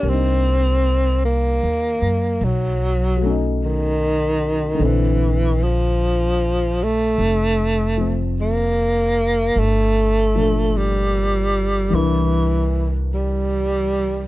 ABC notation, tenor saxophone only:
X:1
M:4/4
L:1/8
Q:"Swing" 1/4=50
K:Bblyd
V:1 name="Tenor saxophone" clef=bass
C2 B,2 ^F,2 ^D,2 | E, F,2 A,3 B,2 | A,2 G,2 E,2 G,2 |]